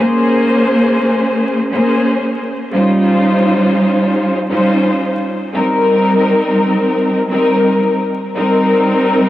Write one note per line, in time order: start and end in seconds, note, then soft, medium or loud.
0.00 1.61 A#3 loud
0.00 1.61 C#4 medium
0.00 1.61 G#4 medium
0.00 1.62 C5 loud
1.71 2.37 A#3 loud
1.71 2.37 C#4 medium
1.71 2.37 G#4 medium
1.71 2.38 C5 loud
2.73 4.38 G3 loud
2.73 4.38 C#4 medium
2.73 4.39 D#4 medium
2.73 4.39 F4 loud
2.73 4.39 C5 loud
4.49 5.15 G3 loud
4.49 5.15 C#4 medium
4.49 5.16 D#4 medium
4.49 5.16 F4 medium
4.49 5.16 C5 loud
5.53 7.18 G3 loud
5.53 7.18 C4 medium
5.53 7.19 D#4 medium
5.53 7.19 A#4 loud
7.29 7.95 G3 loud
7.29 7.95 C4 medium
7.29 7.95 D#4 medium
7.29 7.96 A#4 loud
8.35 9.29 G3 loud
8.35 9.29 C4 loud
8.35 9.29 D#4 medium
8.35 9.29 A#4 loud